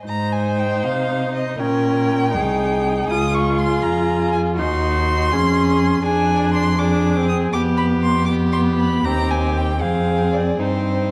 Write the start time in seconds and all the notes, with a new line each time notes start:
0.06 G#2 D#4 C5 A#5
0.33 G#5
0.59 G5
0.83 C3 F5
1.35 D#5
1.59 A#2 C#4 A#4 G5
2.35 C2 D#4 G#4
3.09 C#2 F4 G#4 D#6
3.35 C#6
3.58 C6
3.82 F2 A#5
4.32 G#5
4.57 D#2 D#4 F#4 C6
5.31 F2 C#4 G#4
6.04 F2 D4 G#4 G#5
6.54 C6
6.79 D4 G#4 D6
7.17 C4
7.29 D#6
7.53 F2 B3 G4 D6
7.77 B5
8.03 C6
8.26 B3 G4 D6
8.53 C6
8.79 B5
9.04 D#2 C4 G4 A#5
9.30 G#5
9.57 G5
9.81 F2 C4 G#4 F5
10.33 D5
10.59 G2 C4 D#4 C5